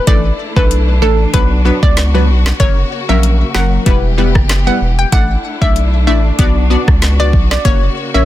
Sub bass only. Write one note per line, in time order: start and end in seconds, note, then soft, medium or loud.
0.07 0.31 A1 loud
0.56 1.03 B1 loud
1.02 1.26 A1 medium
1.34 1.71 B1 loud
1.83 2.30 C#2 medium
2.28 2.52 B1 loud
2.60 2.84 F#1 loud
3.09 3.44 A#1 medium
3.54 3.79 F#1 loud
3.86 4.37 E1 loud
4.35 4.70 F#1 loud
4.81 5.05 E1 medium
5.12 5.37 A1 loud
5.62 6.09 B1 loud
6.07 6.31 A1 medium
6.39 6.76 B1 loud
6.88 7.35 C#2 medium
7.33 7.57 B1 loud
7.65 7.89 F#1 loud
8.14 8.25 A#1 loud